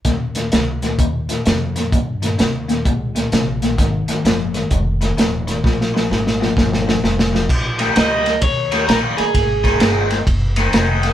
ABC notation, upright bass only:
X:1
M:4/4
L:1/8
Q:"Swing" 1/4=129
K:Ebmix
V:1 name="Upright bass" clef=bass
E,,2 D,,2 E,,2 F,,2 | G,,2 E,,2 D,,2 B,,,2 | A,,, z _G,,,2 F,,,2 E,,,2 | B,,,2 A,,,2 G,,,2 F,,,2 |
B,,,2 D,,2 E,,2 B,,, z | A,,,2 G,,,2 _G,,,2 F,,,2 |]